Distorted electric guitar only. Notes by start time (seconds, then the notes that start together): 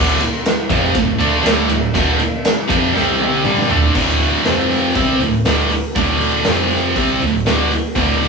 Already playing: D2 A2 D3
0.21 muted distorted electric guitar stroke
0.69 F2 C3 F3
0.95 D2 A2
1.18 D3 A3 D4
1.42 D2 A2 D3
1.69 D2 A2
1.94 D2 A2 D3
2.19 muted distorted electric guitar stroke
2.68 F2 C3 F3
2.93 C3 G3 C4
3.44 G2 D3 G3
3.69 D3 A3 D4
3.94 D2 A2 D3
4.45 F2 C3 F3
4.95 C3 G3 C4
5.21 D2 A2
5.46 D2 A2 D3
5.71 muted distorted electric guitar stroke
5.96 D2 A2 D3
6.46 F2 C3 F3
6.96 C3 G3 C4
7.23 D2 A2
7.46 D2 A2 D3
7.72 muted distorted electric guitar stroke
7.96 D2 A2 D3